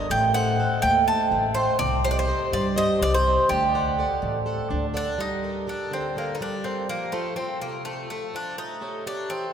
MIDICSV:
0, 0, Header, 1, 4, 480
1, 0, Start_track
1, 0, Tempo, 483871
1, 103, Time_signature, 7, 3, 24, 8
1, 9455, End_track
2, 0, Start_track
2, 0, Title_t, "Steel-string acoustic guitar"
2, 0, Program_c, 0, 25
2, 103, Note_on_c, 0, 57, 70
2, 349, Note_on_c, 0, 63, 46
2, 356, Note_on_c, 0, 72, 57
2, 359, Note_on_c, 0, 69, 40
2, 571, Note_off_c, 0, 57, 0
2, 575, Note_off_c, 0, 63, 0
2, 581, Note_off_c, 0, 69, 0
2, 586, Note_off_c, 0, 72, 0
2, 587, Note_on_c, 0, 63, 52
2, 593, Note_on_c, 0, 69, 49
2, 597, Note_on_c, 0, 72, 53
2, 829, Note_on_c, 0, 57, 73
2, 971, Note_off_c, 0, 63, 0
2, 975, Note_off_c, 0, 69, 0
2, 978, Note_off_c, 0, 72, 0
2, 1064, Note_on_c, 0, 63, 53
2, 1067, Note_on_c, 0, 69, 37
2, 1071, Note_on_c, 0, 72, 56
2, 1294, Note_off_c, 0, 57, 0
2, 1305, Note_on_c, 0, 57, 65
2, 1450, Note_off_c, 0, 69, 0
2, 1451, Note_off_c, 0, 63, 0
2, 1454, Note_off_c, 0, 72, 0
2, 1545, Note_on_c, 0, 63, 50
2, 1551, Note_on_c, 0, 69, 44
2, 1551, Note_on_c, 0, 72, 56
2, 1740, Note_off_c, 0, 63, 0
2, 1740, Note_off_c, 0, 69, 0
2, 1742, Note_off_c, 0, 72, 0
2, 1773, Note_off_c, 0, 57, 0
2, 1789, Note_on_c, 0, 60, 69
2, 2023, Note_on_c, 0, 67, 54
2, 2031, Note_on_c, 0, 72, 47
2, 2039, Note_on_c, 0, 75, 48
2, 2244, Note_off_c, 0, 67, 0
2, 2250, Note_off_c, 0, 72, 0
2, 2253, Note_off_c, 0, 75, 0
2, 2255, Note_off_c, 0, 60, 0
2, 2256, Note_on_c, 0, 67, 52
2, 2261, Note_on_c, 0, 72, 48
2, 2267, Note_on_c, 0, 75, 51
2, 2505, Note_on_c, 0, 55, 68
2, 2646, Note_off_c, 0, 67, 0
2, 2650, Note_off_c, 0, 72, 0
2, 2651, Note_off_c, 0, 75, 0
2, 2741, Note_on_c, 0, 75, 60
2, 2749, Note_on_c, 0, 72, 43
2, 2753, Note_on_c, 0, 67, 42
2, 2974, Note_off_c, 0, 55, 0
2, 2990, Note_on_c, 0, 60, 61
2, 3131, Note_off_c, 0, 67, 0
2, 3132, Note_off_c, 0, 72, 0
2, 3132, Note_off_c, 0, 75, 0
2, 3236, Note_on_c, 0, 67, 49
2, 3241, Note_on_c, 0, 72, 40
2, 3244, Note_on_c, 0, 75, 58
2, 3427, Note_off_c, 0, 67, 0
2, 3428, Note_off_c, 0, 72, 0
2, 3431, Note_off_c, 0, 75, 0
2, 3457, Note_off_c, 0, 60, 0
2, 3463, Note_on_c, 0, 62, 67
2, 3710, Note_on_c, 0, 69, 54
2, 3719, Note_on_c, 0, 74, 39
2, 3722, Note_on_c, 0, 78, 60
2, 3933, Note_off_c, 0, 62, 0
2, 3946, Note_off_c, 0, 69, 0
2, 3947, Note_off_c, 0, 74, 0
2, 3947, Note_off_c, 0, 78, 0
2, 3953, Note_on_c, 0, 69, 52
2, 3961, Note_on_c, 0, 74, 44
2, 3967, Note_on_c, 0, 78, 46
2, 4186, Note_on_c, 0, 57, 71
2, 4340, Note_off_c, 0, 69, 0
2, 4340, Note_off_c, 0, 74, 0
2, 4341, Note_off_c, 0, 78, 0
2, 4424, Note_on_c, 0, 69, 47
2, 4433, Note_on_c, 0, 74, 40
2, 4434, Note_on_c, 0, 78, 57
2, 4655, Note_off_c, 0, 57, 0
2, 4668, Note_on_c, 0, 62, 67
2, 4813, Note_off_c, 0, 69, 0
2, 4814, Note_off_c, 0, 74, 0
2, 4818, Note_off_c, 0, 78, 0
2, 4898, Note_on_c, 0, 69, 50
2, 4903, Note_on_c, 0, 74, 48
2, 4911, Note_on_c, 0, 78, 49
2, 5096, Note_off_c, 0, 69, 0
2, 5100, Note_off_c, 0, 74, 0
2, 5102, Note_off_c, 0, 78, 0
2, 5136, Note_off_c, 0, 62, 0
2, 5142, Note_on_c, 0, 55, 57
2, 5394, Note_on_c, 0, 67, 42
2, 5398, Note_on_c, 0, 69, 32
2, 5400, Note_on_c, 0, 70, 46
2, 5611, Note_off_c, 0, 67, 0
2, 5613, Note_off_c, 0, 55, 0
2, 5620, Note_off_c, 0, 69, 0
2, 5623, Note_on_c, 0, 67, 41
2, 5627, Note_off_c, 0, 70, 0
2, 5632, Note_on_c, 0, 69, 38
2, 5639, Note_on_c, 0, 70, 46
2, 5866, Note_on_c, 0, 50, 56
2, 6011, Note_off_c, 0, 67, 0
2, 6016, Note_off_c, 0, 69, 0
2, 6020, Note_off_c, 0, 70, 0
2, 6110, Note_on_c, 0, 67, 41
2, 6119, Note_on_c, 0, 69, 35
2, 6120, Note_on_c, 0, 70, 42
2, 6335, Note_off_c, 0, 50, 0
2, 6357, Note_on_c, 0, 55, 51
2, 6495, Note_off_c, 0, 67, 0
2, 6497, Note_off_c, 0, 69, 0
2, 6500, Note_off_c, 0, 70, 0
2, 6591, Note_on_c, 0, 67, 40
2, 6598, Note_on_c, 0, 70, 49
2, 6600, Note_on_c, 0, 69, 33
2, 6784, Note_off_c, 0, 67, 0
2, 6787, Note_off_c, 0, 69, 0
2, 6788, Note_off_c, 0, 70, 0
2, 6820, Note_off_c, 0, 55, 0
2, 6839, Note_on_c, 0, 53, 60
2, 7070, Note_on_c, 0, 72, 45
2, 7075, Note_on_c, 0, 69, 38
2, 7080, Note_on_c, 0, 65, 37
2, 7289, Note_off_c, 0, 65, 0
2, 7296, Note_off_c, 0, 69, 0
2, 7297, Note_off_c, 0, 72, 0
2, 7300, Note_off_c, 0, 53, 0
2, 7301, Note_on_c, 0, 65, 43
2, 7306, Note_on_c, 0, 69, 43
2, 7312, Note_on_c, 0, 72, 44
2, 7557, Note_on_c, 0, 48, 61
2, 7688, Note_off_c, 0, 65, 0
2, 7692, Note_off_c, 0, 69, 0
2, 7693, Note_off_c, 0, 72, 0
2, 7795, Note_on_c, 0, 65, 43
2, 7799, Note_on_c, 0, 69, 37
2, 7803, Note_on_c, 0, 72, 45
2, 8018, Note_off_c, 0, 48, 0
2, 8040, Note_on_c, 0, 53, 52
2, 8175, Note_off_c, 0, 69, 0
2, 8177, Note_off_c, 0, 65, 0
2, 8180, Note_off_c, 0, 72, 0
2, 8268, Note_on_c, 0, 65, 43
2, 8278, Note_on_c, 0, 69, 37
2, 8279, Note_on_c, 0, 72, 51
2, 8461, Note_off_c, 0, 65, 0
2, 8462, Note_off_c, 0, 69, 0
2, 8466, Note_off_c, 0, 72, 0
2, 8499, Note_off_c, 0, 53, 0
2, 8514, Note_on_c, 0, 57, 58
2, 8743, Note_on_c, 0, 67, 44
2, 8747, Note_on_c, 0, 69, 44
2, 8751, Note_on_c, 0, 73, 40
2, 8975, Note_off_c, 0, 57, 0
2, 8982, Note_off_c, 0, 67, 0
2, 8982, Note_off_c, 0, 69, 0
2, 8989, Note_off_c, 0, 73, 0
2, 8992, Note_on_c, 0, 67, 45
2, 8997, Note_on_c, 0, 69, 38
2, 9001, Note_on_c, 0, 73, 47
2, 9232, Note_on_c, 0, 52, 59
2, 9372, Note_off_c, 0, 67, 0
2, 9373, Note_off_c, 0, 69, 0
2, 9377, Note_off_c, 0, 73, 0
2, 9455, Note_off_c, 0, 52, 0
2, 9455, End_track
3, 0, Start_track
3, 0, Title_t, "Bouzouki"
3, 0, Program_c, 1, 25
3, 0, Note_on_c, 1, 75, 75
3, 105, Note_off_c, 1, 75, 0
3, 109, Note_on_c, 1, 79, 99
3, 337, Note_off_c, 1, 79, 0
3, 341, Note_on_c, 1, 78, 102
3, 790, Note_off_c, 1, 78, 0
3, 814, Note_on_c, 1, 79, 102
3, 1044, Note_off_c, 1, 79, 0
3, 1068, Note_on_c, 1, 81, 94
3, 1291, Note_off_c, 1, 81, 0
3, 1532, Note_on_c, 1, 72, 88
3, 1763, Note_off_c, 1, 72, 0
3, 1774, Note_on_c, 1, 74, 107
3, 2025, Note_off_c, 1, 74, 0
3, 2029, Note_on_c, 1, 72, 104
3, 2088, Note_off_c, 1, 72, 0
3, 2092, Note_on_c, 1, 74, 84
3, 2165, Note_off_c, 1, 74, 0
3, 2172, Note_on_c, 1, 72, 89
3, 2514, Note_on_c, 1, 74, 99
3, 2522, Note_off_c, 1, 72, 0
3, 2750, Note_off_c, 1, 74, 0
3, 2754, Note_on_c, 1, 75, 101
3, 2996, Note_off_c, 1, 75, 0
3, 3000, Note_on_c, 1, 74, 107
3, 3108, Note_off_c, 1, 74, 0
3, 3119, Note_on_c, 1, 72, 99
3, 3450, Note_off_c, 1, 72, 0
3, 3465, Note_on_c, 1, 67, 95
3, 4870, Note_off_c, 1, 67, 0
3, 4927, Note_on_c, 1, 62, 84
3, 5162, Note_on_c, 1, 63, 84
3, 5167, Note_off_c, 1, 62, 0
3, 5604, Note_off_c, 1, 63, 0
3, 5647, Note_on_c, 1, 62, 65
3, 5863, Note_off_c, 1, 62, 0
3, 5886, Note_on_c, 1, 60, 73
3, 6103, Note_off_c, 1, 60, 0
3, 6130, Note_on_c, 1, 58, 67
3, 6296, Note_on_c, 1, 63, 62
3, 6306, Note_off_c, 1, 58, 0
3, 6354, Note_off_c, 1, 63, 0
3, 6369, Note_on_c, 1, 62, 72
3, 6584, Note_off_c, 1, 62, 0
3, 6589, Note_on_c, 1, 60, 64
3, 6813, Note_off_c, 1, 60, 0
3, 6838, Note_on_c, 1, 58, 85
3, 7058, Note_off_c, 1, 58, 0
3, 7065, Note_on_c, 1, 57, 73
3, 7291, Note_off_c, 1, 57, 0
3, 7303, Note_on_c, 1, 60, 69
3, 7529, Note_off_c, 1, 60, 0
3, 7554, Note_on_c, 1, 58, 69
3, 7775, Note_off_c, 1, 58, 0
3, 7787, Note_on_c, 1, 57, 72
3, 8025, Note_off_c, 1, 57, 0
3, 8037, Note_on_c, 1, 57, 73
3, 8280, Note_off_c, 1, 57, 0
3, 8290, Note_on_c, 1, 62, 80
3, 8503, Note_off_c, 1, 62, 0
3, 8514, Note_on_c, 1, 63, 83
3, 8955, Note_off_c, 1, 63, 0
3, 8998, Note_on_c, 1, 62, 81
3, 9223, Note_on_c, 1, 60, 77
3, 9238, Note_off_c, 1, 62, 0
3, 9446, Note_off_c, 1, 60, 0
3, 9455, End_track
4, 0, Start_track
4, 0, Title_t, "Upright bass"
4, 0, Program_c, 2, 32
4, 99, Note_on_c, 2, 33, 100
4, 607, Note_off_c, 2, 33, 0
4, 827, Note_on_c, 2, 39, 85
4, 1164, Note_off_c, 2, 39, 0
4, 1301, Note_on_c, 2, 33, 86
4, 1640, Note_off_c, 2, 33, 0
4, 1781, Note_on_c, 2, 36, 103
4, 2288, Note_off_c, 2, 36, 0
4, 2506, Note_on_c, 2, 43, 88
4, 2844, Note_off_c, 2, 43, 0
4, 2990, Note_on_c, 2, 36, 91
4, 3327, Note_off_c, 2, 36, 0
4, 3473, Note_on_c, 2, 38, 100
4, 3977, Note_off_c, 2, 38, 0
4, 4194, Note_on_c, 2, 33, 85
4, 4529, Note_off_c, 2, 33, 0
4, 4680, Note_on_c, 2, 38, 85
4, 5014, Note_off_c, 2, 38, 0
4, 9455, End_track
0, 0, End_of_file